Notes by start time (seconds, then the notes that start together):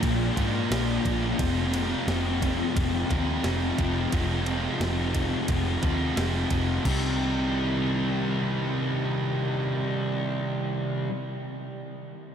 Already playing: A#2 F3 G#3 D4 F4 D5 G5 A#5
0.03 A#1 A#2 F3 A#3, kick, ride
0.37 G#2 A#2 F3 G#3 D4 F4, kick, ride
0.70 A#1 A#2 F3 G#3 D4 F4, snare, ride
1.04 A#1 F3 A#3, kick, ride
1.38 F1 F2 C3 F3 G#3 C4 F4, kick, ride
1.74 ride
2.08 F1 F2 C3 F3, snare, ride
2.42 kick, ride
2.76 F1 F2 C3 F3, kick, ride
3.09 D#2 F2 C3 F3 G#3 C4 F4, kick, ride
3.42 F1 F2 C3 F3 G#3 C4 F4, snare, ride
3.78 F1 C3 F3, kick, ride
4.11 F1 F2 C3 F3 G#3 C4 F4, kick, ride
4.46 ride
4.80 F1 F2 C3 F3, snare, ride
5.15 kick, ride
5.48 F1 F2 C3 F3, kick, ride
5.82 D#2 F2 C3 F3 G#3 C4 F4, kick, ride
6.16 F1 F2 C3 F3 G#3 C4 F4, snare, ride
6.50 F1 C3 F3, kick, ride
6.84 C2 C3 D#3 G3 D#4 G4, kick, crash
6.88 C4